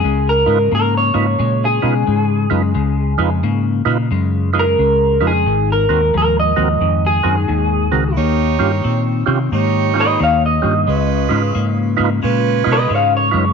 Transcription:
Already playing: G#4
0.03 C#2 C#3 G#3
0.29 A#4
0.46 G#2 C#3 G#3 D#4 F4 B4
0.71 G#2 C#3 A#3 A#4
0.97 C#5
1.14 G#2 C#3 A#3 D#4 F4 B4
1.39 A#2 C#3 G#3
1.65 G#4
1.82 B2 C#3 G#3 D#4 F4 B4
2.06 G#2 C#3 G#3
2.50 F#2 C#3 G#3 D#4 F4 B4
2.74 C#2 C#3 G#3
3.18 F2 C#3 G#3 D#4 F4 B4
3.43 G#2 C#3 A#3
3.85 A#2 C#3 A#3 D#4 F4 B4
4.11 F#2 C#3 G#3
4.53 C#3 G#3 D#4 F4 B4
4.59 A#4
4.78 C#2 C#3 G#3
5.20 F2 C#3 G#3 D#4 F4 B4
5.27 G#4
5.46 G#1 G#2 D#3
5.72 A#4
5.89 D#2 G#2 D#3 C4 F#4 A#4
6.13 D#2 G#2 F3
6.17 A#4
6.40 D#5
6.56 D#2 G#2 F3 C4 F#4 A#4
6.81 F2 G#2 D#3
7.07 G#4
7.23 F#2 G#2 D#3 C4 F#4 A#4
7.48 D#2 G#2 D#3
7.91 C#2 G#2 D#3 C4 F#4 A#4
8.16 D#2 D#3 A#3 D#4 G4 C#5
8.59 G2 D#3 A#3 C#4 F4 G4
8.84 A#2 D#3 C4
9.26 C3 D#3 C4 C#4 F4 G4
9.52 G#2 D#3 A#3 D#4 G4 C#5
9.94 D#3 A#3 C#4 F4 G4
10.00 B4 D#5
10.19 D#2 D#3 A#3 C#5
10.23 F5
10.46 D#5
10.62 G2 D#3 A#3 C#4 F4 G4
10.87 C#2 C#3 G#3 C#4 F4 B4
11.29 G#2 C#3 G#3 D#4 F4 B4
11.55 G#2 C#3 A#3
11.97 G#2 C#3 A#3 D#4 F4 B4
12.22 A#2 C#3 G#3 C#4 F4 B4
12.64 B2 C#3 G#3 D#4 F4 B4
12.72 B4 D#5
12.89 G#2 C#3 G#3
12.94 C#5 F5
13.17 C#5
13.31 F#2 C#3 G#3 D#4 F4 B4

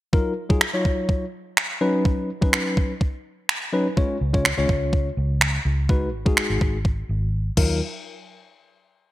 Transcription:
0.13 F#3 D#4 F4 A#4, kick
0.50 F#3 D#4 F4 G#4, kick
0.61 finger snap
0.74 F#3 D#4 F4 C#5
0.85 kick
1.09 kick
1.57 finger snap
1.81 F#3 C#4 D#4 B4
2.05 kick
2.42 F#3 C#4 D#4 B4, kick
2.53 finger snap
2.77 kick
3.01 kick
3.49 finger snap
3.73 F#3 C#4 D#4 B4
3.97 G#3 C#4 F4 C#5, kick
4.21 C#2
4.33 G#3 C#4 F4 C#5, kick
4.45 finger snap
4.58 C#2 G#3 C#4 F4 C#5
4.69 C#2, kick
4.93 kick
5.17 C#2
5.41 finger snap
5.65 C#2
5.89 G#3 D#4 F#4 B4, kick
6.13 G#1
6.26 G#3 D#4 F#4 G#4, kick
6.37 finger snap
6.50 G#1
6.61 G#1, kick
6.85 kick
7.09 G#1
7.57 D#2 F#3 D#4 F4 A#4, kick, crash

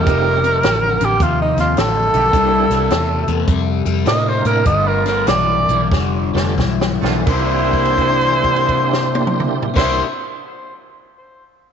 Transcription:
Already playing: A#4
0.05 F1 F2 C3 G3 A3 C4 D#4 F4 G4, kick, closed hi-hat
0.44 F2 C3, closed hi-hat
0.63 A1 F2 D3, snare, closed hi-hat
1.00 A1 F2 D3, closed hi-hat
1.05 G4
1.20 D#2 F2 C3 F4, kick, closed hi-hat
1.42 D#4
1.57 D#2 F2 C3 F4, snare, closed hi-hat
1.77 A1 F2 D3 A4, snare, closed hi-hat
2.13 B1 F2 D3 A3 D#4 G4, closed hi-hat
2.32 C2 C3 G3 A#3 C4 D4 E4 G4, kick, closed hi-hat
2.70 C2 C3 G3, snare, closed hi-hat
2.90 E2 C3 A3, snare, closed hi-hat
3.28 E2 C3 A3, closed hi-hat
3.48 F2 C3 G3, kick, closed hi-hat
3.86 F2 C3 G3, closed hi-hat
4.05 A2 C3 A3 A#3 C4 D4 E4 A#4 D#5, snare, closed hi-hat
4.29 C5
4.43 A2 C3 A3 A#3 D4 E4 A#4, closed hi-hat
4.64 G1 G2 D3 A3 B3 F4 D#5, kick, closed hi-hat
4.88 A#4
5.06 G2 D3 A#4, snare, closed hi-hat
5.27 B1 G2 E3 D5, snare, closed hi-hat
5.69 B1 G2 E3, closed hi-hat
5.91 F1 G2 D3, kick, snare
6.34 F1 G2 D3 A3 B3 D4 F4 G4, snare
6.57 B1 G2 E3, kick, snare
6.81 snare
7.01 B1 G2 E3 A3 A#3 B3 C4 D4 E4 F4 A4, snare
7.12 A#3
7.19 C4
7.25 C2 C3 A#3 D4 E4, kick, crash
7.29 E4 C5
7.38 G4
7.73 kick, crash
7.85 crash
7.98 kick, crash
8.21 crash
8.44 kick, crash
8.56 crash
8.69 kick, crash
8.93 snare
9.15 high tom
9.27 mid tom
9.40 mid tom
9.62 A#3, floor tom
9.70 C4
9.74 C2 C3 A#3 D4 E4 C5, kick, crash
9.78 E4, snare
9.88 G4

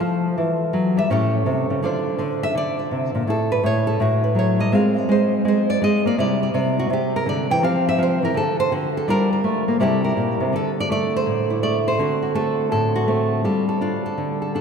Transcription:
Already playing: A3 E4 F4 A4
0.00 F3
0.38 E3
0.73 F#3
0.97 G3 E5
1.10 A2 C#4 G4 A4 C#5
1.46 C3
1.70 C#3
1.83 D3 D4 F4 C5 D5
2.18 D3 C5
2.43 E5
2.55 D3 D5
2.79 D5
2.91 C3
3.15 A#2
3.27 A2 A4
3.52 B4
3.63 A2 C#5
3.87 A4
4.00 A2 F#4
4.24 B4
4.35 F#3 C#5
4.59 G3 D#5
4.72 G#3 C4 F4 A#4 F5
4.98 D5
5.09 G#3 C5
5.45 G#3 C5
5.70 D5
5.82 G#3 D#5
6.05 A#3 D5
6.18 C3 G3 E4 D5
6.43 D5
6.54 C3 D5
6.79 F#4
6.90 C3 G4
7.16 A#4
7.26 D3 D5
7.51 E3 G5
7.63 F3 C4 G4 C5 F5
7.89 E5
7.98 F3
8.03 C5
8.23 E3 A#4
8.34 D3 A4
8.60 C5
8.72 D3 F#4
8.97 A4
9.08 G3 D4 F4 A#4
9.33 A#4
9.44 A3
9.68 A#3
9.80 C3 G3 E4 G4 A4
10.04 A#4
10.17 A#2
10.40 C3
10.53 D3 A4
10.80 D5
10.90 A3 D5
11.16 C5
11.26 A2
11.50 E4
11.63 A3 D5
11.88 C5
11.99 D3 C4 F#4
12.23 F#4
12.35 A3 A4
12.71 A2 A4
12.96 F#4
13.07 A3 C4
13.44 G3 F4 A4
13.69 A4
13.81 D4 F4
14.06 A4
14.17 D3
14.42 A4
14.55 D4 A4

